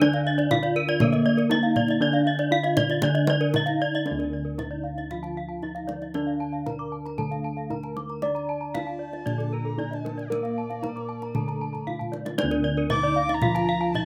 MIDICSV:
0, 0, Header, 1, 8, 480
1, 0, Start_track
1, 0, Tempo, 505051
1, 8, Time_signature, 4, 2, 24, 8
1, 3368, Tempo, 519931
1, 13067, End_track
2, 0, Start_track
2, 0, Title_t, "Erhu"
2, 0, Program_c, 0, 110
2, 8180, Note_on_c, 0, 81, 53
2, 8901, Note_on_c, 0, 82, 58
2, 8915, Note_off_c, 0, 81, 0
2, 9275, Note_on_c, 0, 81, 49
2, 9289, Note_off_c, 0, 82, 0
2, 9587, Note_on_c, 0, 74, 42
2, 9601, Note_off_c, 0, 81, 0
2, 11081, Note_off_c, 0, 74, 0
2, 12014, Note_on_c, 0, 86, 109
2, 12414, Note_on_c, 0, 82, 107
2, 12428, Note_off_c, 0, 86, 0
2, 12967, Note_on_c, 0, 81, 91
2, 12981, Note_off_c, 0, 82, 0
2, 13067, Note_off_c, 0, 81, 0
2, 13067, End_track
3, 0, Start_track
3, 0, Title_t, "Bronze metallophone"
3, 0, Program_c, 1, 11
3, 131, Note_on_c, 1, 77, 65
3, 246, Note_off_c, 1, 77, 0
3, 362, Note_on_c, 1, 74, 71
3, 479, Note_off_c, 1, 74, 0
3, 596, Note_on_c, 1, 74, 60
3, 715, Note_off_c, 1, 74, 0
3, 1070, Note_on_c, 1, 75, 71
3, 1190, Note_off_c, 1, 75, 0
3, 1305, Note_on_c, 1, 70, 67
3, 1427, Note_off_c, 1, 70, 0
3, 1549, Note_on_c, 1, 77, 65
3, 1669, Note_off_c, 1, 77, 0
3, 2028, Note_on_c, 1, 77, 67
3, 2149, Note_off_c, 1, 77, 0
3, 2274, Note_on_c, 1, 74, 69
3, 2393, Note_off_c, 1, 74, 0
3, 2504, Note_on_c, 1, 75, 77
3, 2630, Note_off_c, 1, 75, 0
3, 2991, Note_on_c, 1, 75, 81
3, 3118, Note_off_c, 1, 75, 0
3, 3238, Note_on_c, 1, 70, 76
3, 3364, Note_off_c, 1, 70, 0
3, 3476, Note_on_c, 1, 77, 65
3, 3601, Note_off_c, 1, 77, 0
3, 3963, Note_on_c, 1, 70, 31
3, 4085, Note_off_c, 1, 70, 0
3, 4202, Note_on_c, 1, 70, 30
3, 4324, Note_off_c, 1, 70, 0
3, 4442, Note_on_c, 1, 74, 33
3, 4561, Note_on_c, 1, 77, 34
3, 4564, Note_off_c, 1, 74, 0
3, 4684, Note_off_c, 1, 77, 0
3, 4923, Note_on_c, 1, 81, 32
3, 5045, Note_off_c, 1, 81, 0
3, 5161, Note_on_c, 1, 81, 25
3, 5284, Note_off_c, 1, 81, 0
3, 5403, Note_on_c, 1, 77, 32
3, 5520, Note_on_c, 1, 74, 34
3, 5525, Note_off_c, 1, 77, 0
3, 5643, Note_off_c, 1, 74, 0
3, 5883, Note_on_c, 1, 77, 30
3, 6005, Note_off_c, 1, 77, 0
3, 6121, Note_on_c, 1, 77, 31
3, 6244, Note_off_c, 1, 77, 0
3, 6366, Note_on_c, 1, 86, 34
3, 6485, Note_on_c, 1, 81, 33
3, 6487, Note_off_c, 1, 86, 0
3, 6606, Note_off_c, 1, 81, 0
3, 6848, Note_on_c, 1, 77, 32
3, 6968, Note_off_c, 1, 77, 0
3, 7084, Note_on_c, 1, 77, 31
3, 7206, Note_off_c, 1, 77, 0
3, 7331, Note_on_c, 1, 81, 30
3, 7449, Note_off_c, 1, 81, 0
3, 7451, Note_on_c, 1, 86, 38
3, 7569, Note_off_c, 1, 86, 0
3, 7805, Note_on_c, 1, 82, 36
3, 7926, Note_off_c, 1, 82, 0
3, 8045, Note_on_c, 1, 82, 32
3, 8166, Note_off_c, 1, 82, 0
3, 8283, Note_on_c, 1, 81, 32
3, 8397, Note_on_c, 1, 74, 33
3, 8405, Note_off_c, 1, 81, 0
3, 8523, Note_off_c, 1, 74, 0
3, 8757, Note_on_c, 1, 69, 31
3, 8882, Note_off_c, 1, 69, 0
3, 9004, Note_on_c, 1, 69, 33
3, 9126, Note_off_c, 1, 69, 0
3, 9246, Note_on_c, 1, 75, 29
3, 9367, Note_off_c, 1, 75, 0
3, 9373, Note_on_c, 1, 70, 32
3, 9490, Note_off_c, 1, 70, 0
3, 9726, Note_on_c, 1, 77, 33
3, 9847, Note_off_c, 1, 77, 0
3, 9973, Note_on_c, 1, 77, 31
3, 10091, Note_off_c, 1, 77, 0
3, 10215, Note_on_c, 1, 86, 31
3, 10332, Note_off_c, 1, 86, 0
3, 10332, Note_on_c, 1, 81, 38
3, 10450, Note_off_c, 1, 81, 0
3, 10695, Note_on_c, 1, 82, 36
3, 10812, Note_off_c, 1, 82, 0
3, 10927, Note_on_c, 1, 82, 27
3, 11048, Note_off_c, 1, 82, 0
3, 11169, Note_on_c, 1, 81, 34
3, 11285, Note_on_c, 1, 74, 31
3, 11289, Note_off_c, 1, 81, 0
3, 11407, Note_off_c, 1, 74, 0
3, 11646, Note_on_c, 1, 70, 51
3, 11767, Note_off_c, 1, 70, 0
3, 11890, Note_on_c, 1, 70, 61
3, 12009, Note_off_c, 1, 70, 0
3, 12129, Note_on_c, 1, 74, 69
3, 12247, Note_on_c, 1, 77, 64
3, 12249, Note_off_c, 1, 74, 0
3, 12368, Note_off_c, 1, 77, 0
3, 12605, Note_on_c, 1, 81, 64
3, 12727, Note_off_c, 1, 81, 0
3, 12844, Note_on_c, 1, 81, 63
3, 12967, Note_off_c, 1, 81, 0
3, 13067, End_track
4, 0, Start_track
4, 0, Title_t, "Bronze metallophone"
4, 0, Program_c, 2, 11
4, 19, Note_on_c, 2, 74, 94
4, 131, Note_off_c, 2, 74, 0
4, 254, Note_on_c, 2, 75, 87
4, 366, Note_off_c, 2, 75, 0
4, 487, Note_on_c, 2, 77, 97
4, 601, Note_off_c, 2, 77, 0
4, 723, Note_on_c, 2, 70, 101
4, 838, Note_off_c, 2, 70, 0
4, 842, Note_on_c, 2, 74, 86
4, 957, Note_off_c, 2, 74, 0
4, 962, Note_on_c, 2, 70, 84
4, 1076, Note_off_c, 2, 70, 0
4, 1195, Note_on_c, 2, 74, 85
4, 1312, Note_off_c, 2, 74, 0
4, 1437, Note_on_c, 2, 75, 108
4, 1553, Note_off_c, 2, 75, 0
4, 1677, Note_on_c, 2, 74, 84
4, 1793, Note_off_c, 2, 74, 0
4, 1810, Note_on_c, 2, 75, 77
4, 1920, Note_off_c, 2, 75, 0
4, 1920, Note_on_c, 2, 74, 94
4, 2035, Note_off_c, 2, 74, 0
4, 2157, Note_on_c, 2, 75, 89
4, 2274, Note_off_c, 2, 75, 0
4, 2395, Note_on_c, 2, 77, 110
4, 2515, Note_off_c, 2, 77, 0
4, 2634, Note_on_c, 2, 74, 98
4, 2756, Note_off_c, 2, 74, 0
4, 2761, Note_on_c, 2, 75, 77
4, 2881, Note_off_c, 2, 75, 0
4, 2884, Note_on_c, 2, 74, 89
4, 3003, Note_off_c, 2, 74, 0
4, 3135, Note_on_c, 2, 74, 92
4, 3251, Note_off_c, 2, 74, 0
4, 3382, Note_on_c, 2, 75, 109
4, 3494, Note_off_c, 2, 75, 0
4, 3620, Note_on_c, 2, 74, 77
4, 3733, Note_off_c, 2, 74, 0
4, 3742, Note_on_c, 2, 75, 77
4, 3854, Note_off_c, 2, 75, 0
4, 3854, Note_on_c, 2, 74, 44
4, 3970, Note_off_c, 2, 74, 0
4, 4096, Note_on_c, 2, 74, 32
4, 4211, Note_off_c, 2, 74, 0
4, 4332, Note_on_c, 2, 75, 46
4, 4449, Note_off_c, 2, 75, 0
4, 4691, Note_on_c, 2, 75, 36
4, 4809, Note_off_c, 2, 75, 0
4, 4814, Note_on_c, 2, 77, 35
4, 4930, Note_off_c, 2, 77, 0
4, 5057, Note_on_c, 2, 77, 39
4, 5172, Note_off_c, 2, 77, 0
4, 5293, Note_on_c, 2, 75, 37
4, 5410, Note_off_c, 2, 75, 0
4, 5656, Note_on_c, 2, 75, 36
4, 5771, Note_off_c, 2, 75, 0
4, 5773, Note_on_c, 2, 74, 45
4, 5890, Note_off_c, 2, 74, 0
4, 6007, Note_on_c, 2, 81, 36
4, 6127, Note_off_c, 2, 81, 0
4, 6248, Note_on_c, 2, 82, 43
4, 6367, Note_off_c, 2, 82, 0
4, 6611, Note_on_c, 2, 82, 36
4, 6726, Note_on_c, 2, 81, 43
4, 6729, Note_off_c, 2, 82, 0
4, 6846, Note_off_c, 2, 81, 0
4, 6969, Note_on_c, 2, 81, 35
4, 7088, Note_off_c, 2, 81, 0
4, 7210, Note_on_c, 2, 82, 43
4, 7328, Note_off_c, 2, 82, 0
4, 7573, Note_on_c, 2, 82, 30
4, 7687, Note_on_c, 2, 86, 39
4, 7690, Note_off_c, 2, 82, 0
4, 7808, Note_off_c, 2, 86, 0
4, 7934, Note_on_c, 2, 81, 42
4, 8051, Note_off_c, 2, 81, 0
4, 8169, Note_on_c, 2, 77, 45
4, 8288, Note_off_c, 2, 77, 0
4, 8529, Note_on_c, 2, 75, 34
4, 8643, Note_on_c, 2, 74, 41
4, 8648, Note_off_c, 2, 75, 0
4, 8765, Note_off_c, 2, 74, 0
4, 8891, Note_on_c, 2, 70, 36
4, 9009, Note_off_c, 2, 70, 0
4, 9131, Note_on_c, 2, 74, 44
4, 9249, Note_off_c, 2, 74, 0
4, 9492, Note_on_c, 2, 74, 32
4, 9610, Note_off_c, 2, 74, 0
4, 9619, Note_on_c, 2, 70, 37
4, 9733, Note_off_c, 2, 70, 0
4, 9863, Note_on_c, 2, 81, 34
4, 9976, Note_off_c, 2, 81, 0
4, 10095, Note_on_c, 2, 82, 43
4, 10212, Note_off_c, 2, 82, 0
4, 10463, Note_on_c, 2, 82, 37
4, 10576, Note_off_c, 2, 82, 0
4, 10579, Note_on_c, 2, 81, 34
4, 10694, Note_off_c, 2, 81, 0
4, 10819, Note_on_c, 2, 81, 34
4, 10934, Note_off_c, 2, 81, 0
4, 11055, Note_on_c, 2, 77, 44
4, 11172, Note_off_c, 2, 77, 0
4, 11410, Note_on_c, 2, 75, 38
4, 11527, Note_on_c, 2, 74, 77
4, 11529, Note_off_c, 2, 75, 0
4, 11648, Note_off_c, 2, 74, 0
4, 11767, Note_on_c, 2, 74, 65
4, 11888, Note_off_c, 2, 74, 0
4, 12006, Note_on_c, 2, 75, 87
4, 12127, Note_off_c, 2, 75, 0
4, 12367, Note_on_c, 2, 75, 63
4, 12488, Note_off_c, 2, 75, 0
4, 12490, Note_on_c, 2, 77, 75
4, 12610, Note_off_c, 2, 77, 0
4, 12733, Note_on_c, 2, 77, 80
4, 12851, Note_off_c, 2, 77, 0
4, 12978, Note_on_c, 2, 75, 89
4, 13067, Note_off_c, 2, 75, 0
4, 13067, End_track
5, 0, Start_track
5, 0, Title_t, "Bronze metallophone"
5, 0, Program_c, 3, 11
5, 12, Note_on_c, 3, 62, 97
5, 481, Note_off_c, 3, 62, 0
5, 483, Note_on_c, 3, 65, 85
5, 954, Note_off_c, 3, 65, 0
5, 957, Note_on_c, 3, 58, 82
5, 1422, Note_on_c, 3, 63, 80
5, 1432, Note_off_c, 3, 58, 0
5, 1906, Note_off_c, 3, 63, 0
5, 1914, Note_on_c, 3, 62, 80
5, 2386, Note_on_c, 3, 65, 72
5, 2395, Note_off_c, 3, 62, 0
5, 2875, Note_off_c, 3, 65, 0
5, 2883, Note_on_c, 3, 62, 87
5, 3360, Note_on_c, 3, 63, 72
5, 3370, Note_off_c, 3, 62, 0
5, 3837, Note_on_c, 3, 62, 37
5, 3843, Note_off_c, 3, 63, 0
5, 4322, Note_off_c, 3, 62, 0
5, 4325, Note_on_c, 3, 63, 35
5, 4806, Note_off_c, 3, 63, 0
5, 4822, Note_on_c, 3, 65, 40
5, 5289, Note_on_c, 3, 63, 36
5, 5294, Note_off_c, 3, 65, 0
5, 5768, Note_off_c, 3, 63, 0
5, 5773, Note_on_c, 3, 62, 38
5, 6250, Note_off_c, 3, 62, 0
5, 6250, Note_on_c, 3, 70, 40
5, 6725, Note_on_c, 3, 69, 38
5, 6729, Note_off_c, 3, 70, 0
5, 7206, Note_off_c, 3, 69, 0
5, 7215, Note_on_c, 3, 70, 36
5, 7686, Note_on_c, 3, 74, 48
5, 7691, Note_off_c, 3, 70, 0
5, 8167, Note_off_c, 3, 74, 0
5, 8177, Note_on_c, 3, 65, 33
5, 8652, Note_off_c, 3, 65, 0
5, 8652, Note_on_c, 3, 62, 42
5, 9121, Note_off_c, 3, 62, 0
5, 9132, Note_on_c, 3, 62, 44
5, 9610, Note_off_c, 3, 62, 0
5, 9622, Note_on_c, 3, 58, 42
5, 10095, Note_off_c, 3, 58, 0
5, 10105, Note_on_c, 3, 70, 38
5, 10577, Note_off_c, 3, 70, 0
5, 10584, Note_on_c, 3, 69, 44
5, 11056, Note_off_c, 3, 69, 0
5, 11069, Note_on_c, 3, 65, 37
5, 11532, Note_on_c, 3, 62, 78
5, 11539, Note_off_c, 3, 65, 0
5, 12010, Note_on_c, 3, 63, 60
5, 12011, Note_off_c, 3, 62, 0
5, 12490, Note_off_c, 3, 63, 0
5, 12496, Note_on_c, 3, 65, 78
5, 12972, Note_off_c, 3, 65, 0
5, 12974, Note_on_c, 3, 63, 71
5, 13067, Note_off_c, 3, 63, 0
5, 13067, End_track
6, 0, Start_track
6, 0, Title_t, "Kettle gongs"
6, 0, Program_c, 4, 14
6, 0, Note_on_c, 4, 50, 79
6, 24, Note_on_c, 4, 62, 71
6, 444, Note_off_c, 4, 50, 0
6, 492, Note_on_c, 4, 63, 59
6, 568, Note_off_c, 4, 63, 0
6, 955, Note_on_c, 4, 50, 86
6, 1399, Note_off_c, 4, 62, 0
6, 1430, Note_on_c, 4, 63, 49
6, 1506, Note_off_c, 4, 63, 0
6, 1907, Note_on_c, 4, 62, 77
6, 2355, Note_off_c, 4, 50, 0
6, 2391, Note_on_c, 4, 63, 54
6, 2467, Note_off_c, 4, 63, 0
6, 2882, Note_on_c, 4, 50, 65
6, 3328, Note_off_c, 4, 62, 0
6, 3378, Note_on_c, 4, 63, 42
6, 3452, Note_off_c, 4, 63, 0
6, 3846, Note_on_c, 4, 62, 56
6, 3891, Note_on_c, 4, 38, 72
6, 4291, Note_off_c, 4, 50, 0
6, 4328, Note_on_c, 4, 63, 43
6, 4401, Note_off_c, 4, 63, 0
6, 5250, Note_off_c, 4, 62, 0
6, 5293, Note_on_c, 4, 63, 36
6, 5367, Note_off_c, 4, 63, 0
6, 5775, Note_on_c, 4, 62, 63
6, 6251, Note_on_c, 4, 63, 36
6, 6325, Note_off_c, 4, 63, 0
6, 6713, Note_off_c, 4, 38, 0
6, 6731, Note_on_c, 4, 50, 59
6, 7174, Note_off_c, 4, 62, 0
6, 7207, Note_on_c, 4, 63, 39
6, 7281, Note_off_c, 4, 63, 0
6, 7694, Note_on_c, 4, 74, 58
6, 8133, Note_off_c, 4, 50, 0
6, 8172, Note_on_c, 4, 63, 46
6, 8246, Note_off_c, 4, 63, 0
6, 8645, Note_on_c, 4, 46, 62
6, 9094, Note_off_c, 4, 74, 0
6, 9126, Note_on_c, 4, 63, 44
6, 9200, Note_off_c, 4, 63, 0
6, 9606, Note_on_c, 4, 70, 52
6, 10050, Note_off_c, 4, 46, 0
6, 10091, Note_on_c, 4, 63, 38
6, 10165, Note_off_c, 4, 63, 0
6, 10570, Note_on_c, 4, 50, 55
6, 11011, Note_off_c, 4, 70, 0
6, 11057, Note_on_c, 4, 63, 37
6, 11131, Note_off_c, 4, 63, 0
6, 11528, Note_on_c, 4, 62, 58
6, 11574, Note_on_c, 4, 38, 78
6, 11973, Note_off_c, 4, 50, 0
6, 12011, Note_on_c, 4, 63, 43
6, 12085, Note_off_c, 4, 63, 0
6, 12932, Note_off_c, 4, 62, 0
6, 12971, Note_on_c, 4, 63, 44
6, 13045, Note_off_c, 4, 63, 0
6, 13067, Note_off_c, 4, 38, 0
6, 13067, End_track
7, 0, Start_track
7, 0, Title_t, "Bronze metallophone"
7, 0, Program_c, 5, 11
7, 12, Note_on_c, 5, 50, 86
7, 954, Note_off_c, 5, 50, 0
7, 960, Note_on_c, 5, 58, 101
7, 1907, Note_on_c, 5, 50, 95
7, 1913, Note_off_c, 5, 58, 0
7, 2870, Note_off_c, 5, 50, 0
7, 2881, Note_on_c, 5, 50, 75
7, 3843, Note_off_c, 5, 50, 0
7, 3854, Note_on_c, 5, 50, 36
7, 4802, Note_on_c, 5, 53, 39
7, 4811, Note_off_c, 5, 50, 0
7, 5762, Note_on_c, 5, 50, 40
7, 5765, Note_off_c, 5, 53, 0
7, 6724, Note_off_c, 5, 50, 0
7, 6733, Note_on_c, 5, 57, 39
7, 7686, Note_on_c, 5, 62, 41
7, 7691, Note_off_c, 5, 57, 0
7, 8647, Note_off_c, 5, 62, 0
7, 8651, Note_on_c, 5, 50, 35
7, 9600, Note_on_c, 5, 58, 39
7, 9610, Note_off_c, 5, 50, 0
7, 10564, Note_off_c, 5, 58, 0
7, 10572, Note_on_c, 5, 57, 40
7, 11528, Note_on_c, 5, 50, 73
7, 11530, Note_off_c, 5, 57, 0
7, 12485, Note_on_c, 5, 53, 79
7, 12489, Note_off_c, 5, 50, 0
7, 13067, Note_off_c, 5, 53, 0
7, 13067, End_track
8, 0, Start_track
8, 0, Title_t, "Kendang"
8, 15, Note_on_c, 9, 63, 63
8, 110, Note_off_c, 9, 63, 0
8, 128, Note_on_c, 9, 62, 23
8, 223, Note_off_c, 9, 62, 0
8, 367, Note_on_c, 9, 62, 24
8, 462, Note_off_c, 9, 62, 0
8, 484, Note_on_c, 9, 63, 60
8, 484, Note_on_c, 9, 64, 58
8, 579, Note_off_c, 9, 63, 0
8, 579, Note_off_c, 9, 64, 0
8, 599, Note_on_c, 9, 62, 23
8, 694, Note_off_c, 9, 62, 0
8, 840, Note_on_c, 9, 62, 30
8, 935, Note_off_c, 9, 62, 0
8, 951, Note_on_c, 9, 64, 88
8, 1046, Note_off_c, 9, 64, 0
8, 1077, Note_on_c, 9, 62, 26
8, 1172, Note_off_c, 9, 62, 0
8, 1316, Note_on_c, 9, 62, 21
8, 1411, Note_off_c, 9, 62, 0
8, 1433, Note_on_c, 9, 63, 56
8, 1528, Note_off_c, 9, 63, 0
8, 1671, Note_on_c, 9, 64, 74
8, 1766, Note_off_c, 9, 64, 0
8, 1790, Note_on_c, 9, 62, 26
8, 1885, Note_off_c, 9, 62, 0
8, 2270, Note_on_c, 9, 62, 25
8, 2365, Note_off_c, 9, 62, 0
8, 2509, Note_on_c, 9, 62, 24
8, 2604, Note_off_c, 9, 62, 0
8, 2631, Note_on_c, 9, 63, 57
8, 2631, Note_on_c, 9, 64, 70
8, 2726, Note_off_c, 9, 63, 0
8, 2726, Note_off_c, 9, 64, 0
8, 2752, Note_on_c, 9, 62, 30
8, 2847, Note_off_c, 9, 62, 0
8, 2869, Note_on_c, 9, 64, 97
8, 2964, Note_off_c, 9, 64, 0
8, 2994, Note_on_c, 9, 62, 27
8, 3089, Note_off_c, 9, 62, 0
8, 3111, Note_on_c, 9, 63, 73
8, 3206, Note_off_c, 9, 63, 0
8, 3237, Note_on_c, 9, 62, 24
8, 3332, Note_off_c, 9, 62, 0
8, 3362, Note_on_c, 9, 63, 55
8, 3362, Note_on_c, 9, 64, 58
8, 3455, Note_off_c, 9, 63, 0
8, 3455, Note_off_c, 9, 64, 0
8, 3482, Note_on_c, 9, 62, 29
8, 3575, Note_off_c, 9, 62, 0
8, 3841, Note_on_c, 9, 63, 30
8, 3934, Note_off_c, 9, 63, 0
8, 3972, Note_on_c, 9, 62, 11
8, 4064, Note_off_c, 9, 62, 0
8, 4332, Note_on_c, 9, 63, 29
8, 4332, Note_on_c, 9, 64, 26
8, 4424, Note_off_c, 9, 63, 0
8, 4424, Note_off_c, 9, 64, 0
8, 4695, Note_on_c, 9, 62, 12
8, 4787, Note_off_c, 9, 62, 0
8, 4811, Note_on_c, 9, 64, 36
8, 4904, Note_off_c, 9, 64, 0
8, 4932, Note_on_c, 9, 62, 11
8, 5024, Note_off_c, 9, 62, 0
8, 5288, Note_on_c, 9, 64, 21
8, 5380, Note_off_c, 9, 64, 0
8, 5412, Note_on_c, 9, 62, 12
8, 5504, Note_off_c, 9, 62, 0
8, 5530, Note_on_c, 9, 63, 31
8, 5623, Note_off_c, 9, 63, 0
8, 5652, Note_on_c, 9, 62, 11
8, 5744, Note_off_c, 9, 62, 0
8, 5767, Note_on_c, 9, 63, 28
8, 5860, Note_off_c, 9, 63, 0
8, 6250, Note_on_c, 9, 63, 27
8, 6250, Note_on_c, 9, 64, 28
8, 6342, Note_off_c, 9, 63, 0
8, 6342, Note_off_c, 9, 64, 0
8, 6617, Note_on_c, 9, 62, 13
8, 6709, Note_off_c, 9, 62, 0
8, 6726, Note_on_c, 9, 64, 35
8, 6819, Note_off_c, 9, 64, 0
8, 6853, Note_on_c, 9, 62, 12
8, 6945, Note_off_c, 9, 62, 0
8, 7210, Note_on_c, 9, 64, 23
8, 7302, Note_off_c, 9, 64, 0
8, 7328, Note_on_c, 9, 62, 12
8, 7420, Note_off_c, 9, 62, 0
8, 7451, Note_on_c, 9, 63, 29
8, 7543, Note_off_c, 9, 63, 0
8, 7569, Note_on_c, 9, 62, 11
8, 7662, Note_off_c, 9, 62, 0
8, 7686, Note_on_c, 9, 63, 31
8, 7779, Note_off_c, 9, 63, 0
8, 7814, Note_on_c, 9, 62, 11
8, 7906, Note_off_c, 9, 62, 0
8, 8172, Note_on_c, 9, 63, 29
8, 8172, Note_on_c, 9, 64, 30
8, 8264, Note_off_c, 9, 63, 0
8, 8264, Note_off_c, 9, 64, 0
8, 8526, Note_on_c, 9, 62, 14
8, 8618, Note_off_c, 9, 62, 0
8, 8653, Note_on_c, 9, 64, 38
8, 8745, Note_off_c, 9, 64, 0
8, 8778, Note_on_c, 9, 62, 13
8, 8870, Note_off_c, 9, 62, 0
8, 9138, Note_on_c, 9, 64, 24
8, 9230, Note_off_c, 9, 64, 0
8, 9266, Note_on_c, 9, 62, 13
8, 9358, Note_off_c, 9, 62, 0
8, 9384, Note_on_c, 9, 63, 33
8, 9477, Note_off_c, 9, 63, 0
8, 9507, Note_on_c, 9, 62, 12
8, 9599, Note_off_c, 9, 62, 0
8, 9625, Note_on_c, 9, 63, 31
8, 9717, Note_off_c, 9, 63, 0
8, 9744, Note_on_c, 9, 62, 13
8, 9836, Note_off_c, 9, 62, 0
8, 9979, Note_on_c, 9, 62, 11
8, 10072, Note_off_c, 9, 62, 0
8, 10100, Note_on_c, 9, 63, 29
8, 10100, Note_on_c, 9, 64, 30
8, 10192, Note_off_c, 9, 63, 0
8, 10192, Note_off_c, 9, 64, 0
8, 10221, Note_on_c, 9, 62, 11
8, 10313, Note_off_c, 9, 62, 0
8, 10455, Note_on_c, 9, 62, 15
8, 10547, Note_off_c, 9, 62, 0
8, 10572, Note_on_c, 9, 64, 43
8, 10665, Note_off_c, 9, 64, 0
8, 10700, Note_on_c, 9, 62, 13
8, 10792, Note_off_c, 9, 62, 0
8, 10943, Note_on_c, 9, 64, 20
8, 11035, Note_off_c, 9, 64, 0
8, 11059, Note_on_c, 9, 64, 23
8, 11152, Note_off_c, 9, 64, 0
8, 11184, Note_on_c, 9, 64, 27
8, 11277, Note_off_c, 9, 64, 0
8, 11299, Note_on_c, 9, 63, 30
8, 11391, Note_off_c, 9, 63, 0
8, 11416, Note_on_c, 9, 63, 37
8, 11509, Note_off_c, 9, 63, 0
8, 11530, Note_on_c, 9, 63, 57
8, 11623, Note_off_c, 9, 63, 0
8, 11649, Note_on_c, 9, 62, 24
8, 11741, Note_off_c, 9, 62, 0
8, 12004, Note_on_c, 9, 63, 48
8, 12004, Note_on_c, 9, 64, 55
8, 12097, Note_off_c, 9, 63, 0
8, 12097, Note_off_c, 9, 64, 0
8, 12367, Note_on_c, 9, 62, 27
8, 12459, Note_off_c, 9, 62, 0
8, 12482, Note_on_c, 9, 64, 72
8, 12575, Note_off_c, 9, 64, 0
8, 12612, Note_on_c, 9, 62, 26
8, 12705, Note_off_c, 9, 62, 0
8, 12972, Note_on_c, 9, 64, 49
8, 13064, Note_off_c, 9, 64, 0
8, 13067, End_track
0, 0, End_of_file